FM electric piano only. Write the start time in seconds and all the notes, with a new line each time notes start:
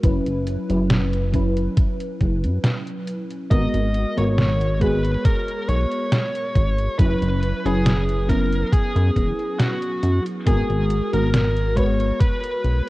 0.03 F#3 C#4 E4 B4
0.69 F#3 C#4 E4 B4
1.32 F#3 C#4 E4 B4
3.50 G#3 B3 F#4 A#4
4.17 G#3 B3 F#4 A#4
4.80 G#3 B3 F#4 G#4
6.98 F#3 C#4 E4 B4
7.65 F#3 C#4 E4 B4
8.28 F#3 B3 C#4 E4
10.46 G#3 B3 F#4 A#4
11.13 G#3 B3 F#4 A#4
11.76 G#3 B3 F#4 B4